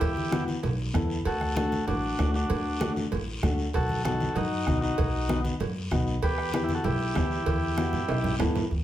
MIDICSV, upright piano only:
0, 0, Header, 1, 2, 480
1, 0, Start_track
1, 0, Key_signature, 1, "minor"
1, 0, Tempo, 310559
1, 19, Time_signature, 4, 2, 24, 8
1, 13658, End_track
2, 0, Start_track
2, 0, Title_t, "Upright piano"
2, 0, Program_c, 0, 0
2, 482, Note_on_c, 0, 59, 87
2, 484, Note_on_c, 0, 64, 72
2, 492, Note_on_c, 0, 66, 97
2, 826, Note_off_c, 0, 59, 0
2, 828, Note_off_c, 0, 64, 0
2, 831, Note_off_c, 0, 66, 0
2, 1443, Note_on_c, 0, 59, 82
2, 1451, Note_on_c, 0, 64, 78
2, 1458, Note_on_c, 0, 69, 91
2, 1787, Note_off_c, 0, 59, 0
2, 1791, Note_off_c, 0, 64, 0
2, 1794, Note_off_c, 0, 69, 0
2, 2406, Note_on_c, 0, 57, 74
2, 2413, Note_on_c, 0, 62, 65
2, 2421, Note_on_c, 0, 66, 74
2, 2749, Note_off_c, 0, 57, 0
2, 2752, Note_off_c, 0, 62, 0
2, 2756, Note_off_c, 0, 66, 0
2, 3382, Note_on_c, 0, 57, 69
2, 3383, Note_on_c, 0, 62, 65
2, 3392, Note_on_c, 0, 66, 76
2, 3716, Note_off_c, 0, 57, 0
2, 3717, Note_off_c, 0, 62, 0
2, 3721, Note_off_c, 0, 66, 0
2, 4329, Note_on_c, 0, 57, 84
2, 4337, Note_on_c, 0, 62, 74
2, 4345, Note_on_c, 0, 66, 88
2, 4670, Note_off_c, 0, 57, 0
2, 4674, Note_off_c, 0, 62, 0
2, 4678, Note_off_c, 0, 66, 0
2, 5294, Note_on_c, 0, 57, 83
2, 5299, Note_on_c, 0, 62, 73
2, 5304, Note_on_c, 0, 66, 93
2, 5633, Note_off_c, 0, 57, 0
2, 5635, Note_off_c, 0, 62, 0
2, 5637, Note_off_c, 0, 66, 0
2, 6256, Note_on_c, 0, 59, 67
2, 6265, Note_on_c, 0, 63, 65
2, 6267, Note_on_c, 0, 66, 81
2, 6594, Note_off_c, 0, 59, 0
2, 6598, Note_off_c, 0, 63, 0
2, 6599, Note_off_c, 0, 66, 0
2, 7211, Note_on_c, 0, 59, 69
2, 7215, Note_on_c, 0, 63, 66
2, 7221, Note_on_c, 0, 66, 78
2, 7551, Note_off_c, 0, 59, 0
2, 7553, Note_off_c, 0, 63, 0
2, 7556, Note_off_c, 0, 66, 0
2, 8169, Note_on_c, 0, 59, 88
2, 8176, Note_on_c, 0, 63, 77
2, 8182, Note_on_c, 0, 66, 91
2, 8510, Note_off_c, 0, 59, 0
2, 8513, Note_off_c, 0, 63, 0
2, 8517, Note_off_c, 0, 66, 0
2, 9136, Note_on_c, 0, 59, 83
2, 9140, Note_on_c, 0, 63, 79
2, 9142, Note_on_c, 0, 66, 93
2, 9473, Note_off_c, 0, 59, 0
2, 9475, Note_off_c, 0, 63, 0
2, 9476, Note_off_c, 0, 66, 0
2, 10098, Note_on_c, 0, 59, 69
2, 10099, Note_on_c, 0, 64, 66
2, 10104, Note_on_c, 0, 67, 80
2, 10434, Note_off_c, 0, 59, 0
2, 10435, Note_off_c, 0, 64, 0
2, 10437, Note_off_c, 0, 67, 0
2, 11043, Note_on_c, 0, 59, 72
2, 11053, Note_on_c, 0, 64, 65
2, 11055, Note_on_c, 0, 67, 82
2, 11387, Note_off_c, 0, 59, 0
2, 11392, Note_off_c, 0, 64, 0
2, 11393, Note_off_c, 0, 67, 0
2, 12009, Note_on_c, 0, 59, 81
2, 12014, Note_on_c, 0, 64, 83
2, 12022, Note_on_c, 0, 66, 95
2, 12350, Note_off_c, 0, 59, 0
2, 12352, Note_off_c, 0, 64, 0
2, 12356, Note_off_c, 0, 66, 0
2, 12963, Note_on_c, 0, 59, 90
2, 12965, Note_on_c, 0, 64, 82
2, 12972, Note_on_c, 0, 69, 97
2, 13307, Note_off_c, 0, 59, 0
2, 13308, Note_off_c, 0, 64, 0
2, 13312, Note_off_c, 0, 69, 0
2, 13658, End_track
0, 0, End_of_file